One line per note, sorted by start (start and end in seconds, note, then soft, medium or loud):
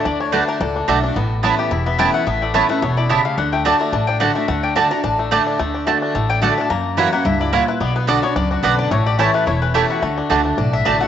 0.00 0.88 A3 medium
0.05 0.39 D2 medium
0.05 0.31 D3 medium
0.05 0.19 D4 medium
0.05 0.20 D5 medium
0.20 0.32 D4 medium
0.20 0.33 C#5 medium
0.32 0.59 D3 medium
0.32 0.42 A3 loud
0.32 0.60 A3 medium
0.32 0.47 D4 medium
0.32 0.60 D4 medium
0.32 0.43 F#4 loud
0.32 0.60 F#4 medium
0.32 0.48 B4 medium
0.32 0.43 D5 medium
0.32 0.43 A5 medium
0.48 0.59 D4 medium
0.48 0.60 A#4 medium
0.60 0.84 C#2 medium
0.60 1.13 A2 medium
0.60 0.75 D4 medium
0.60 1.01 A4 medium
0.76 1.02 D4 medium
0.88 1.12 B1 medium
0.88 1.02 D3 medium
0.88 0.98 A3 medium
0.88 1.03 A3 medium
0.88 1.19 A3 medium
0.88 1.03 D4 medium
0.88 0.98 F#4 loud
0.88 1.02 F#4 medium
0.88 0.98 D5 loud
0.88 0.98 A5 loud
1.03 1.16 D4 medium
1.03 1.16 D4 soft
1.03 1.15 F#4 medium
1.16 1.50 A1 medium
1.16 1.69 A2 medium
1.16 1.42 B3 medium
1.43 1.70 E3 medium
1.43 1.53 B3 medium
1.43 1.83 B3 medium
1.43 1.70 B3 medium
1.43 1.70 C#4 medium
1.43 1.53 E4 medium
1.43 1.71 E4 medium
1.43 1.54 C#5 loud
1.43 1.54 A5 loud
1.59 1.97 G4 medium
1.71 2.06 E1 medium
1.71 2.24 E2 medium
1.71 2.11 E4 medium
1.86 2.24 B3 medium
1.86 1.99 E5 medium
1.98 2.25 E3 loud
1.98 2.42 A3 medium
1.98 2.09 B3 medium
1.98 2.26 B3 medium
1.98 2.26 C#4 medium
1.98 2.09 E4 loud
1.98 2.26 E4 loud
1.98 2.09 C#5 loud
1.98 2.13 G5 medium
1.98 2.09 A5 loud
2.14 2.52 E4 medium
2.14 2.26 F#5 medium
2.27 2.61 A1 medium
2.27 2.80 A2 medium
2.27 2.67 B3 medium
2.27 2.42 E5 medium
2.42 2.69 A3 medium
2.42 2.54 D5 medium
2.54 2.69 E3 medium
2.54 2.64 B3 medium
2.54 2.69 B3 medium
2.54 2.69 C#4 medium
2.54 2.64 E4 medium
2.54 2.94 E4 medium
2.54 2.68 E4 medium
2.54 2.69 C#5 medium
2.54 2.64 C#5 medium
2.54 2.65 A5 loud
2.69 3.13 A3 medium
2.69 2.82 C#4 medium
2.69 2.81 E4 medium
2.69 2.82 B4 loud
2.82 3.16 E1 medium
2.82 3.09 B2 medium
2.82 3.22 B3 medium
2.82 2.97 C#5 medium
2.97 3.35 E4 medium
2.97 3.09 D5 medium
3.09 3.36 C#3 medium
3.09 3.19 B3 medium
3.09 3.20 E4 loud
3.09 3.38 G4 medium
3.09 3.20 C#5 medium
3.09 3.25 E5 medium
3.09 3.20 A5 medium
3.25 3.53 A3 medium
3.25 3.37 F5 loud
3.37 3.72 D2 medium
3.37 3.64 D3 medium
3.37 3.66 D4 medium
3.37 3.52 F#5 medium
3.52 3.80 A3 medium
3.52 3.64 G5 medium
3.65 3.92 D3 medium
3.65 3.75 A3 loud
3.65 3.92 A3 medium
3.65 3.93 D4 medium
3.65 3.92 D4 medium
3.65 3.75 F#4 loud
3.65 3.93 F#4 medium
3.65 3.75 D5 loud
3.65 3.79 A5 medium
3.65 3.75 A5 loud
3.80 4.36 A3 medium
3.80 3.92 A#5 loud
3.92 4.27 A1 medium
3.92 4.46 A2 loud
3.92 4.09 D4 medium
3.92 4.07 A5 medium
4.07 4.20 D4 medium
4.07 4.19 G5 loud
4.20 4.35 D3 medium
4.20 4.30 A3 medium
4.20 4.35 A3 loud
4.20 4.61 D4 medium
4.20 4.35 D4 medium
4.20 4.30 F#4 medium
4.20 4.34 F#4 loud
4.20 4.30 D5 medium
4.20 4.35 F#5 medium
4.20 4.31 A5 medium
4.35 4.47 A3 medium
4.35 4.48 D4 soft
4.35 4.47 F#4 medium
4.35 4.48 E5 medium
4.48 4.83 D2 medium
4.48 4.74 D3 medium
4.48 4.88 A3 medium
4.48 4.63 F#5 medium
4.63 4.75 D4 medium
4.63 4.76 G5 medium
4.75 4.90 D3 loud
4.75 4.86 A3 medium
4.75 4.91 A3 medium
4.75 4.90 D4 medium
4.75 4.91 D4 medium
4.75 4.86 F#4 loud
4.75 4.89 F#4 medium
4.75 4.86 D5 loud
4.75 4.91 A5 medium
4.75 4.86 A5 loud
4.90 5.03 D4 medium
4.90 5.04 D4 medium
4.90 5.03 F#4 medium
4.90 5.03 A#5 loud
5.04 5.38 A1 medium
5.04 5.57 A2 medium
5.04 5.31 D4 medium
5.04 5.13 A5 medium
5.19 5.57 A3 medium
5.31 5.58 D3 medium
5.31 5.41 A3 loud
5.31 5.58 A3 loud
5.31 5.45 D4 medium
5.31 5.58 D4 medium
5.31 5.41 F#4 medium
5.31 5.59 F#4 loud
5.31 5.41 D5 loud
5.31 5.42 A5 loud
5.47 5.59 D4 medium
5.59 5.94 D2 medium
5.59 5.85 D3 medium
5.59 5.86 A3 medium
5.74 6.01 D4 medium
5.87 6.13 D3 medium
5.87 5.97 A3 medium
5.87 6.14 A3 medium
5.87 6.14 D4 medium
5.87 5.97 F#4 medium
5.87 6.14 F#4 loud
5.87 5.97 D5 medium
5.87 5.97 A5 loud
6.02 6.29 D4 medium
6.15 6.49 A1 medium
6.15 6.68 A2 medium
6.15 6.41 A3 medium
6.30 6.57 D4 medium
6.30 6.42 G5 loud
6.42 6.56 D3 loud
6.42 6.52 A3 medium
6.42 6.70 A3 medium
6.42 6.57 A3 loud
6.42 6.57 D4 loud
6.42 6.52 F#4 loud
6.42 6.56 F#4 medium
6.42 6.52 D5 loud
6.42 6.50 F#5 medium
6.42 6.53 A5 loud
6.51 6.60 E5 medium
6.57 6.70 D4 medium
6.57 6.71 D4 soft
6.57 6.70 F#4 medium
6.57 6.70 A5 medium
6.70 7.23 F#2 medium
6.70 7.04 F#2 medium
6.70 7.10 A#3 medium
6.70 7.10 A#5 loud
6.97 7.12 E3 medium
6.97 7.07 A#3 medium
6.97 7.12 A#3 medium
6.97 7.12 C#4 medium
6.97 7.07 E4 medium
6.97 7.24 E4 medium
6.97 7.11 F#4 loud
6.97 7.08 C#5 loud
6.97 7.08 F#5 loud
7.12 7.51 A#3 medium
7.12 7.25 C#4 medium
7.12 7.25 F#5 medium
7.25 7.59 C#2 medium
7.25 7.51 G2 medium
7.25 7.39 E4 medium
7.25 7.40 E5 medium
7.40 7.52 E4 medium
7.40 7.53 D5 loud
7.52 7.79 A#2 medium
7.52 7.63 A#3 medium
7.52 7.63 E4 loud
7.52 7.67 E4 medium
7.52 7.63 C#5 loud
7.52 7.68 C#5 medium
7.52 7.63 F#5 loud
7.68 7.81 E4 medium
7.68 7.80 B4 medium
7.80 8.15 B1 medium
7.80 8.33 B2 medium
7.80 7.95 B3 medium
7.80 7.95 D5 loud
7.96 8.22 B3 medium
7.96 8.08 B4 medium
8.07 8.22 D3 medium
8.07 8.18 B3 medium
8.07 8.23 B3 medium
8.07 8.35 D4 medium
8.07 8.23 D4 medium
8.07 8.18 F#4 loud
8.07 8.21 F#4 loud
8.07 8.23 A4 medium
8.07 8.18 D5 loud
8.07 8.18 F#5 loud
8.22 8.61 B3 medium
8.22 8.36 D4 medium
8.22 8.35 F#4 medium
8.22 8.36 C#5 loud
8.36 8.59 C#2 medium
8.36 8.89 F#2 medium
8.36 8.50 D4 medium
8.36 8.51 D5 medium
8.51 8.63 D4 medium
8.51 8.64 F#4 medium
8.63 8.87 B1 medium
8.63 8.90 D3 medium
8.63 8.73 B3 medium
8.63 8.90 B3 loud
8.63 8.78 D4 medium
8.63 8.91 D4 medium
8.63 8.74 F#4 medium
8.63 8.91 F#4 loud
8.63 8.79 B4 medium
8.63 8.74 D5 medium
8.63 8.74 F#5 loud
8.79 8.91 D4 medium
8.79 8.91 D5 loud
8.91 9.26 A1 medium
8.91 9.44 A2 medium
8.91 9.31 A3 medium
8.91 9.06 C#5 medium
9.06 9.44 G4 medium
9.06 9.18 D5 loud
9.19 9.46 E3 medium
9.19 9.29 A3 medium
9.19 9.46 A3 medium
9.19 9.59 C#4 medium
9.19 9.46 C#4 medium
9.19 9.29 E4 medium
9.19 9.46 E4 loud
9.19 9.34 C#5 medium
9.19 9.29 C#5 medium
9.19 9.30 A5 loud
9.34 9.72 A3 medium
9.34 9.46 B4 loud
9.47 9.82 E1 medium
9.47 10.00 E2 medium
9.47 9.87 E4 medium
9.47 9.61 C#5 medium
9.62 10.00 C#4 medium
9.62 9.74 B4 medium
9.74 10.01 E3 medium
9.74 9.84 A3 medium
9.74 10.01 A3 medium
9.74 10.02 C#4 medium
9.74 9.85 E4 medium
9.74 10.02 E4 loud
9.74 10.02 G4 medium
9.74 9.89 A4 medium
9.74 9.85 C#5 loud
9.74 9.85 A5 medium
9.90 10.03 E4 medium
9.90 10.54 F#4 medium
10.02 10.20 D2 medium
10.02 10.29 D3 medium
10.02 10.29 A3 medium
10.18 10.44 D4 medium
10.30 10.54 C#2 medium
10.30 10.56 D3 medium
10.30 10.40 A3 medium
10.30 10.70 A3 medium
10.30 10.57 A3 medium
10.30 10.57 D4 loud
10.30 10.40 F#4 loud
10.30 10.57 F#4 medium
10.30 10.40 D5 medium
10.30 10.40 A5 loud
10.45 10.56 D4 medium
10.57 10.81 B1 medium
10.57 11.07 A2 medium
10.57 10.72 D4 medium
10.73 10.84 D4 medium
10.73 10.99 E5 loud
10.85 11.07 A1 medium
10.85 11.00 D3 medium
10.85 10.95 A3 medium
10.85 11.00 A3 medium
10.85 11.07 D4 medium
10.85 11.00 D4 medium
10.85 10.95 F#4 medium
10.85 10.99 F#4 loud
10.85 10.96 D5 medium
10.85 10.96 A5 loud
11.00 11.07 A3 medium
11.00 11.07 D4 soft
11.00 11.07 F#4 medium
11.00 11.07 F#5 loud